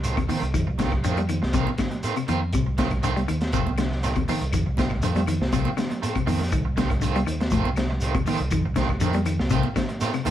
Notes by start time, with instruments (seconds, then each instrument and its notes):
Already playing: fingered electric bass C2
0.03 clean electric guitar D#3 A3 C4 F4, closed hi-hat, shekere
0.17 fingered electric bass D#2, clean electric guitar C3, muted clean electric guitar stroke, kick, closed hi-hat, claves
0.29 clean electric guitar D#3 A3 C4 F4, open hi-hat, high conga, low conga, shekere
0.42 fingered electric bass C2, muted clean electric guitar stroke, closed hi-hat
0.54 fingered electric bass F2, clean electric guitar D#3, kick, closed hi-hat, claves, shekere
0.67 fingered electric bass C2, muted clean electric guitar stroke
0.78 clean electric guitar D3 D#3 A3 C4 F4, kick, snare, closed hi-hat, high conga, shekere
0.92 muted clean electric guitar stroke, kick, claves
1.03 fingered electric bass F2, clean electric guitar D3 D#3 A3 C4 F4, closed hi-hat, shekere
1.17 clean electric guitar G3, closed hi-hat, high conga
1.29 clean electric guitar D#3, muted clean electric guitar stroke, closed hi-hat, high conga, claves, shekere
1.42 fingered electric bass C2, muted clean electric guitar stroke, snare
1.53 clean electric guitar C3 D#3 A3 C4 F4, kick, closed hi-hat, low conga, shekere
1.67 high conga
1.78 clean electric guitar D3, muted clean electric guitar stroke, kick, snare, closed hi-hat, claves, shekere
1.91 muted clean electric guitar stroke, closed hi-hat, high conga
2.03 clean electric guitar D#3 A3 C4 F4, closed hi-hat, high conga, shekere
2.16 clean electric guitar C3, muted clean electric guitar stroke, closed hi-hat, claves
2.28 fingered electric bass F2, clean electric guitar D#3 C4 F4, muted clean electric guitar stroke, closed hi-hat, high conga, low conga, shekere
2.42 muted clean electric guitar stroke
2.53 fingered electric bass C2, clean electric guitar C3, kick, closed hi-hat, claves, shekere
2.67 muted clean electric guitar stroke
2.78 clean electric guitar D3 D#3 A3 C4 F4, kick, snare, closed hi-hat, high conga, shekere
2.91 muted clean electric guitar stroke, kick, closed hi-hat, claves
3.03 clean electric guitar D3 D#3 A3 C4 F4, closed hi-hat, shekere
3.16 clean electric guitar G3, closed hi-hat, high conga
3.28 fingered electric bass D#2, clean electric guitar D#3, muted clean electric guitar stroke, closed hi-hat, claves, shekere
3.41 muted clean electric guitar stroke, snare, closed hi-hat
3.52 fingered electric bass F1, clean electric guitar C3 D#3 A3 C4 F4, kick, closed hi-hat, low conga, shekere
3.66 fingered electric bass C2, high conga
3.78 clean electric guitar D3, muted clean electric guitar stroke, snare, closed hi-hat, claves, shekere
3.91 muted clean electric guitar stroke, snare
4.03 clean electric guitar D#3 A3 C4 F4, snare, closed hi-hat, shekere
4.16 fingered electric bass D#2, clean electric guitar C3, muted clean electric guitar stroke, kick, closed hi-hat, claves
4.28 clean electric guitar D#3 A3 C4 F4, open hi-hat, high conga, low conga, shekere
4.41 fingered electric bass C2, muted clean electric guitar stroke, closed hi-hat
4.53 fingered electric bass F2, clean electric guitar D#3, kick, closed hi-hat, claves, shekere
4.66 fingered electric bass C2, muted clean electric guitar stroke
4.77 clean electric guitar D3 D#3 A3 C4 F4, kick, snare, closed hi-hat, high conga, shekere
4.90 muted clean electric guitar stroke, kick, claves
5.02 fingered electric bass F2, clean electric guitar D3 D#3 A3 C4 F4, closed hi-hat, shekere
5.15 clean electric guitar G3, closed hi-hat, high conga
5.27 clean electric guitar D#3, muted clean electric guitar stroke, closed hi-hat, high conga, low conga, claves, shekere
5.40 fingered electric bass C2, muted clean electric guitar stroke, snare
5.52 clean electric guitar C3 D#3 A3 C4 F4, kick, closed hi-hat, low conga, shekere
5.65 high conga
5.77 clean electric guitar D3, muted clean electric guitar stroke, snare, closed hi-hat, claves, shekere
5.90 muted clean electric guitar stroke, closed hi-hat, high conga
6.02 clean electric guitar D#3 A3 C4 F4, closed hi-hat, high conga, shekere
6.15 clean electric guitar C3, muted clean electric guitar stroke, kick, closed hi-hat, claves
6.26 fingered electric bass F2, clean electric guitar D#3 A3 C4 F4, open hi-hat, high conga, low conga, shekere
6.40 muted clean electric guitar stroke, snare
6.52 fingered electric bass C2, clean electric guitar D#3, kick, closed hi-hat, claves, shekere
6.65 muted clean electric guitar stroke
6.77 clean electric guitar D3 D#3 A3 C4 F4, kick, snare, closed hi-hat, high conga, shekere
6.90 muted clean electric guitar stroke, kick, closed hi-hat, claves
7.01 clean electric guitar D3 D#3 A3 C4 F4, closed hi-hat, shekere
7.15 clean electric guitar G3, closed hi-hat, high conga
7.26 fingered electric bass D#2, clean electric guitar D#3, muted clean electric guitar stroke, closed hi-hat, low conga, claves, shekere
7.40 muted clean electric guitar stroke, snare, closed hi-hat
7.50 fingered electric bass F1, clean electric guitar A2 D#3 A3 C4 F4, kick, closed hi-hat, low conga, shekere
7.64 fingered electric bass C2, high conga
7.76 clean electric guitar D3, muted clean electric guitar stroke, snare, closed hi-hat, claves, shekere
7.91 muted clean electric guitar stroke
8.00 clean electric guitar D#3 A3 C4 F4, closed hi-hat, shekere
8.15 fingered electric bass D#2, clean electric guitar C3, muted clean electric guitar stroke, kick, closed hi-hat, claves
8.26 clean electric guitar D#3 A3 C4 F4, open hi-hat, high conga, low conga, shekere
8.39 fingered electric bass C2, muted clean electric guitar stroke, closed hi-hat
8.51 fingered electric bass F2, clean electric guitar D#3, kick, closed hi-hat, claves, shekere
8.64 fingered electric bass C2, muted clean electric guitar stroke
8.75 clean electric guitar D3 D#3 A3 C4 F4, kick, snare, closed hi-hat, high conga, shekere
8.89 muted clean electric guitar stroke, kick, claves
9.00 fingered electric bass F2, clean electric guitar D3 D#3 A3 C4, muted clean electric guitar stroke, closed hi-hat, shekere
9.13 clean electric guitar G3, closed hi-hat, high conga
9.25 clean electric guitar D#3, muted clean electric guitar stroke, closed hi-hat, claves, shekere
9.39 fingered electric bass C2, muted clean electric guitar stroke, snare
9.50 clean electric guitar C3 D#3 A3 C4 F4, kick, closed hi-hat, low conga, shekere
9.63 high conga
9.76 clean electric guitar D3, muted clean electric guitar stroke, kick, snare, closed hi-hat, claves, shekere
9.89 muted clean electric guitar stroke, closed hi-hat
10.00 clean electric guitar D#3 A3 C4 F4, snare, closed hi-hat, high conga, shekere
10.13 clean electric guitar C3, muted clean electric guitar stroke, closed hi-hat, claves
10.25 fingered electric bass F2, clean electric guitar D#3 A3 C4 F4, closed hi-hat, high conga, low conga, shekere